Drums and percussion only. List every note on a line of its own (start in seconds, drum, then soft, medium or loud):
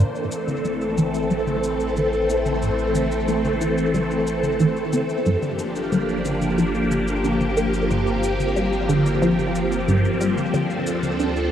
0.15 shaker soft
0.32 shaker medium
0.48 high tom soft
0.48 shaker soft
0.65 shaker soft
0.81 shaker soft
0.98 high tom soft
0.98 shaker medium
1.14 shaker soft
1.31 shaker soft
1.47 high tom soft
1.47 shaker soft
1.63 shaker medium
1.80 shaker soft
1.97 high tom soft
1.97 shaker soft
2.13 shaker soft
2.30 shaker medium
2.46 high tom soft
2.46 shaker soft
2.62 shaker soft
2.79 shaker soft
2.95 high tom soft
2.95 shaker medium
3.12 shaker soft
3.28 shaker soft
3.45 high tom soft
3.45 shaker soft
3.61 shaker medium
3.78 shaker soft
3.94 high tom soft
3.94 shaker soft
4.11 shaker soft
4.27 shaker medium
4.43 high tom soft
4.43 shaker soft
4.60 shaker soft
4.76 shaker soft
4.93 high tom soft
4.93 shaker medium
5.09 shaker soft
5.26 shaker soft
5.42 high tom soft
5.42 shaker soft
5.59 shaker medium
5.76 shaker medium
5.92 high tom soft
5.92 shaker soft
6.09 shaker soft
6.25 shaker medium
6.42 high tom soft
6.42 shaker soft
6.58 shaker medium
6.75 shaker soft
6.91 high tom soft
6.91 shaker medium
7.08 shaker medium
7.24 shaker medium
7.41 high tom soft
7.41 shaker soft
7.57 shaker medium
7.74 shaker soft
7.91 high tom soft
7.91 shaker soft
8.07 shaker soft
8.23 shaker medium
8.40 high tom soft
8.40 shaker medium
8.56 shaker soft
8.73 shaker soft
8.89 high tom soft
8.89 shaker medium
9.06 shaker soft
9.22 shaker soft
9.39 high tom soft
9.39 shaker soft
9.55 shaker medium
9.72 shaker soft
9.88 high tom soft
9.88 shaker soft
10.05 shaker soft
10.21 shaker medium
10.38 high tom soft
10.38 shaker soft
10.54 high tom soft
10.54 shaker soft
10.70 shaker soft
10.87 shaker medium
11.03 high tom soft
11.03 shaker soft
11.20 shaker soft
11.36 shaker soft